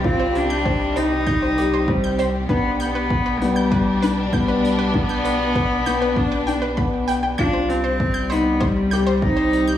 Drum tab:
HH |-x-x-x-x|-x-x-x-x|-x-x-x-x|-x-x-x-x|
BD |o-o-o-o-|o-o-o-o-|o-o-o-o-|o-o-o-o-|